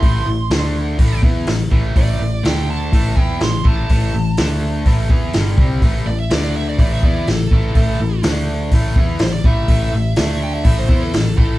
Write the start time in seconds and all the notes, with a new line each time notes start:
Already playing: C6
0.02 A1 A2 E3 A3, kick, open hi-hat
0.26 A1 A2 E3
0.50 D2 D3 A3 D4, snare, open hi-hat
0.99 A1 A2 E3 A3, kick, open hi-hat
1.23 E2 E3 B3 E4, kick
1.47 A1 A2 E3, snare, open hi-hat
1.71 A1 A2 E3 A3, kick
1.96 A1 A2 E3 A3 D5, kick, open hi-hat
2.20 A1 A2 E3
2.43 D2 D3 A3 D4 G5, snare, open hi-hat
2.71 A5
2.92 A1 A2 E3 A3, kick, open hi-hat
3.16 E2 E3 B3 E4 G5, kick
3.40 A1 A2 E3 C6, snare, open hi-hat
3.64 A1 A2 E3 A3 A5, kick
3.89 A1 A2 E3 A3, kick, open hi-hat
4.14 A1 A2 E3
4.37 D2 D3 A3 D4, snare, open hi-hat
4.85 A1 A2 E3 A3, kick, open hi-hat
5.10 E2 E3 B3 E4, kick
5.33 G1 G2 D3 G3, snare, open hi-hat
5.58 C2 C3 G3 C4, kick
5.82 A1 A2 E3 A3, kick, open hi-hat
6.06 A1 A2 E3 D5
6.20 E5
6.30 D2 D3 A3 D4 D5, snare, open hi-hat
6.44 D5
6.57 E5
6.69 D5
6.79 A1 A2 E3 A3 D5, kick, open hi-hat
6.93 E5
7.02 E2 E3 B3 E4 D5, kick
7.27 A1 A2 E3 A4, snare, open hi-hat
7.51 A1 A2 E3 A3, kick
7.75 A1 A2 E3 A3, kick, open hi-hat
8.00 A1 A2 E3
8.23 D2 D3 A3 D4, snare, open hi-hat
8.71 A1 A2 E3 A3, kick, open hi-hat
8.96 E2 E3 B3 E4, kick
9.19 A1 A2 E3 C5, snare, open hi-hat
9.33 D5
9.44 A1 A2 E3 A3 E5, kick
9.68 A1 A2 E3 A3, kick, open hi-hat
9.93 A1 A2 E3
10.16 D2 D3 A3 D4, snare, open hi-hat
10.43 G5
10.54 E5
10.64 A1 A2 E3 A3, kick, open hi-hat
10.79 C5
10.89 E2 E3 B3 E4, kick
11.02 A4
11.13 A1 A2 E3, snare, open hi-hat
11.37 A1 A2 E3 A3 A4, kick